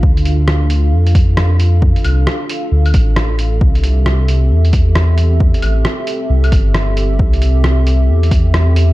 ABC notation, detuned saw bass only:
X:1
M:4/4
L:1/8
Q:"Swing 16ths" 1/4=134
K:Cmix
V:1 name="Detuned saw bass" clef=bass
D,,4 F,,4 | z C,, z2 D,, A,,,3 | C,,4 E,,4 | z A,,, z2 C,, G,,,3 |
C,,4 E,,4 |]